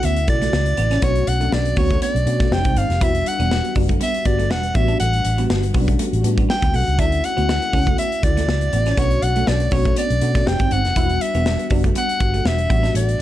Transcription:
Already playing: A3 C#4 E4 F#4
0.03 D2 B3 E5, closed hi-hat
0.16 closed hi-hat
0.27 B1 C#3 A3 E4 F#4 D5, muted clean electric guitar stroke, kick, closed hi-hat
0.42 A3, snare, closed hi-hat
0.53 C#2, muted clean electric guitar stroke, snare
0.66 closed hi-hat
0.77 A1 B3, closed hi-hat
0.91 C#4, snare, closed hi-hat
1.01 B1 A3 B3 C#4 D4 F#4 C#5, kick, closed hi-hat
1.16 closed hi-hat
1.27 B1 F#5, muted clean electric guitar stroke, closed hi-hat
1.40 A3 C#4 D4 F#4, closed hi-hat
1.52 B1 D5, muted clean electric guitar stroke, snare
1.65 closed hi-hat
1.76 D2 A3 B3 C#4 D4 F#4 C#5, kick, open hi-hat
1.91 A3, kick, closed hi-hat
2.02 B3 D5, closed hi-hat
2.15 B1, closed hi-hat
2.26 B2 A3 C#4 D4 F#4, muted clean electric guitar stroke, closed hi-hat
2.40 A3, kick, snare, closed hi-hat
2.51 F1 G#3 C4 D#4 G4 G5, muted clean electric guitar stroke, snare
2.65 C2 C4, kick, closed hi-hat
2.76 G1 C4 F5, closed hi-hat
2.89 F1, snare, closed hi-hat
3.01 E1 G3 B3 D4 E4 F#4 E5, kick, closed hi-hat
3.15 closed hi-hat
3.26 F#5, muted clean electric guitar stroke, closed hi-hat
3.39 E1 G3 B3 D4 F#4, closed hi-hat
3.51 muted clean electric guitar stroke, snare
3.65 closed hi-hat
3.75 F#1 G3 B3 D4 F#4, kick, open hi-hat
3.89 A3, kick, closed hi-hat
4.01 B3 E5, closed hi-hat
4.14 closed hi-hat
4.25 G1 G3 B3 D4 F#4 D5, muted clean electric guitar stroke, kick, closed hi-hat
4.39 A3, closed hi-hat
4.50 E1 F#5, muted clean electric guitar stroke, snare
4.63 closed hi-hat
4.74 A1 G3 B3 D4 F#4 E5, kick, closed hi-hat
4.88 D4, closed hi-hat
5.00 A1 A3 F#5, closed hi-hat
5.13 closed hi-hat
5.25 A1, muted clean electric guitar stroke, closed hi-hat
5.37 G3 B3 D4 F#4, closed hi-hat
5.50 G1, muted clean electric guitar stroke, snare
5.63 closed hi-hat
5.74 B1 G3 B3 C#4 F#4, kick, open hi-hat
5.80 D4
5.88 A3, kick, closed hi-hat
5.99 A3, closed hi-hat
6.13 A1, closed hi-hat
6.23 A2 G3 B3 D4 F#4, muted clean electric guitar stroke, closed hi-hat
6.38 B3, kick, closed hi-hat
6.49 G5, muted clean electric guitar stroke, snare
6.62 D2 B3, kick, closed hi-hat
6.74 B1 A3 F#5, open hi-hat
6.87 C#2, closed hi-hat
6.98 D2 A3 C#4 D4 E4 F#4 E5, kick, closed hi-hat
7.12 closed hi-hat
7.24 F#5, muted clean electric guitar stroke, closed hi-hat
7.36 D2 A3 B3 C#4 E4 F#4, closed hi-hat
7.49 muted clean electric guitar stroke, snare
7.62 closed hi-hat
7.72 C#2 A3 C#4 E4 F#4, kick, open hi-hat
7.87 A3, kick, closed hi-hat
7.98 B3 E5, closed hi-hat
8.12 closed hi-hat
8.22 D2 C#3 A3 E4 F#4 D5, muted clean electric guitar stroke, kick, closed hi-hat
8.37 A3, snare, closed hi-hat
8.48 C#2, muted clean electric guitar stroke, snare
8.61 closed hi-hat
8.73 A1 B3, closed hi-hat
8.86 C#4, snare, closed hi-hat
8.97 B1 A3 B3 C#4 D4 F#4 C#5, kick, closed hi-hat
9.11 closed hi-hat
9.22 B1 F#5, muted clean electric guitar stroke, closed hi-hat
9.35 A3 C#4 D4 F#4, closed hi-hat
9.47 B1 D5, muted clean electric guitar stroke, snare
9.60 closed hi-hat
9.71 B1 A3 B3 C#4 D4 F#4 C#5, kick, open hi-hat
9.85 A3, kick, closed hi-hat
9.96 B3 D5, closed hi-hat
10.10 B1, closed hi-hat
10.21 B2 A3 C#4 D4 F#4, muted clean electric guitar stroke, closed hi-hat
10.35 A3, kick, snare, closed hi-hat
10.46 F1 G#3 C4 D#4 G4 G5, muted clean electric guitar stroke, snare
10.59 G1 C4, kick, closed hi-hat
10.71 G1 C4 F#5, closed hi-hat
10.85 F1, snare, closed hi-hat
10.96 E1 G3 B3 D4 E4 F#4, kick, closed hi-hat
11.10 closed hi-hat
11.21 E5, muted clean electric guitar stroke, closed hi-hat
11.34 E1 G3 B3 D4 F#4, closed hi-hat
11.46 muted clean electric guitar stroke, snare
11.59 closed hi-hat
11.70 F#1 G3 B3 D4 F#4, kick, open hi-hat
11.84 A3, kick, closed hi-hat
11.95 B3 F#5, closed hi-hat
12.09 closed hi-hat
12.20 G1 G3 B3 D4 F#4, muted clean electric guitar stroke, kick, closed hi-hat
12.34 A3, closed hi-hat
12.45 E1 E5, muted clean electric guitar stroke, snare
12.58 closed hi-hat
12.69 A1 G3 B3 D4 F#4, kick, closed hi-hat
12.83 D4, snare, closed hi-hat
12.95 A1 A3 D5, closed hi-hat
13.09 closed hi-hat

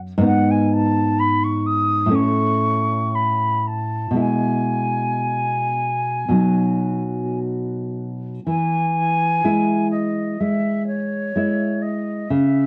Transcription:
Already playing: F#2 B3 D#4
0.18 G#2 B3
0.23 D#4 F#5
0.50 G#5
0.72 A5
1.19 B5
1.43 C#6
1.66 D#6
2.06 A2 A3
2.11 C#4 C#6
3.14 B5
3.67 A5
4.11 B2 G#3
4.16 E4 G#5
6.29 B2 F#3
6.34 D#4
8.46 E3 G#5
9.44 G#3 E4
9.91 D#5
10.40 G#3 E5
10.87 C#5
11.36 G#3 E4
11.81 D#5
12.29 C#3 E5

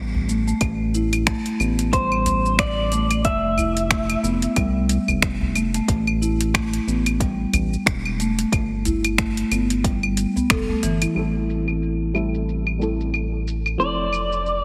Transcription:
Already playing: A1
0.14 udu
0.29 A3, shaker
0.47 A3, shaker
0.61 A1 A3, kick, closed hi-hat, claves, shaker
0.94 E4, shaker
1.13 closed hi-hat, claves, shaker
1.27 A3, finger snap, kick, closed hi-hat
1.46 closed hi-hat
1.60 A1 B3, claves, shaker
1.79 closed hi-hat, shaker
1.93 G3 C5, kick, closed hi-hat, shaker
2.12 claves
2.26 closed hi-hat, udu, shaker
2.46 shaker
2.59 D5, finger snap, kick, closed hi-hat, claves, shaker
2.92 A3, closed hi-hat, shaker
3.11 A3, closed hi-hat, claves, shaker
3.25 F1 A3 E5, kick, closed hi-hat, shaker
3.57 E4, udu, claves, shaker
3.77 closed hi-hat, shaker
3.90 A3, finger snap, kick, closed hi-hat
4.10 closed hi-hat, claves
4.23 F1 B3, shaker
4.42 closed hi-hat, shaker
4.56 C2 G3, kick, closed hi-hat, claves, shaker
4.89 closed hi-hat, shaker
5.08 F1, udu, claves, shaker
5.22 finger snap, kick, closed hi-hat, shaker
5.41 udu
5.55 A3, closed hi-hat, claves, shaker
5.74 A3, closed hi-hat, shaker
5.88 A1 A3, kick, closed hi-hat, shaker
6.07 claves
6.22 E4, shaker
6.41 closed hi-hat, shaker
6.54 A3, finger snap, kick, closed hi-hat, claves, shaker
6.73 closed hi-hat
6.87 A1 B3, shaker
7.06 closed hi-hat, claves, shaker
7.20 G3, kick, closed hi-hat, shaker
7.53 A1, closed hi-hat, udu, claves, shaker
7.73 shaker
7.86 E1, finger snap, kick, closed hi-hat, shaker
8.05 claves
8.20 A3, closed hi-hat, shaker
8.38 A3, closed hi-hat, shaker
8.52 G1 A3, kick, closed hi-hat, claves, shaker
8.85 E4, closed hi-hat, udu, shaker
9.04 closed hi-hat, claves, shaker
9.18 A3, finger snap, kick, closed hi-hat
9.37 closed hi-hat
9.51 G1 B3, closed hi-hat, claves, shaker
9.70 closed hi-hat, shaker
9.84 G3, kick, closed hi-hat, shaker
10.03 claves
10.17 closed hi-hat, shaker
10.36 B3, udu, shaker
10.50 F1 A4, finger snap, kick, closed hi-hat, claves, shaker
10.69 A3, udu
10.83 G1 E3, closed hi-hat, shaker
11.02 E4, closed hi-hat, claves, shaker
11.14 A1 G3 A3 C4 E4, claves, shaker
11.19 A4
11.50 shaker
11.68 claves, shaker
11.83 shaker
12.14 G3 A3 C4 E4 A4, claves, shaker
12.34 shaker
12.49 shaker
12.67 claves
12.79 G3 A3 C4 E4 A4, shaker
13.00 shaker
13.14 claves, shaker
13.47 shaker
13.66 claves, shaker
13.78 F1 F3 A3 C4 E4 A4 D5, shaker
14.13 claves, shaker
14.32 shaker
14.46 shaker

